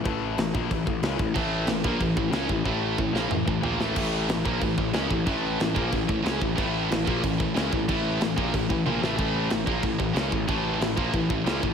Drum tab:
CC |x-x-x-x-|x-x-x-x-|--------|x-x-x-x-|
SD |--o---o-|--o---o-|---o---o|--o---o-|
T1 |--------|--------|--------|--------|
T2 |--------|--------|----o---|--------|
FT |--------|--------|------o-|--------|
BD |o--ooo-o|o--ooo-o|o-o--o--|o--ooo-o|

CC |x-x-x-x-|x-x-x-x-|x-x-x---|x-x-x-x-|
SD |--o---o-|--o---o-|--o----o|--o---o-|
T1 |--------|--------|------o-|--------|
T2 |--------|--------|--------|--------|
FT |--------|--------|--------|--------|
BD |o--ooo-o|o--ooo-o|o--ooo--|o--ooo-o|

CC |x-x-x-x-|
SD |--o---o-|
T1 |--------|
T2 |--------|
FT |--------|
BD |o--ooo-o|